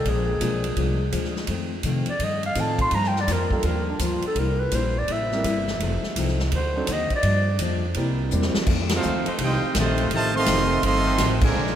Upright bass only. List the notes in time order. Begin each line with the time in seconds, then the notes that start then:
0.05 A#1
0.40 B1
0.76 C2
1.12 D2
1.48 F2
1.83 C3
2.07 muted upright bass stroke
2.19 G2
2.56 A2
2.92 G2
3.27 F2
3.63 D#2
3.99 D2
4.23 muted upright bass stroke
4.35 C2
4.72 A#1
5.08 A1
5.44 G1
5.79 F1
6.03 muted upright bass stroke
6.16 C2
6.51 D2
6.87 D#2
7.11 muted upright bass stroke
7.23 G2
7.59 F2
7.95 C2
8.32 E2
8.56 muted upright bass stroke
8.66 F2
9.04 D2
9.27 muted upright bass stroke
9.38 C2
9.62 muted upright bass stroke
9.75 A#1
10.11 A1
10.46 F1
10.83 G1
11.18 A1
11.55 A#1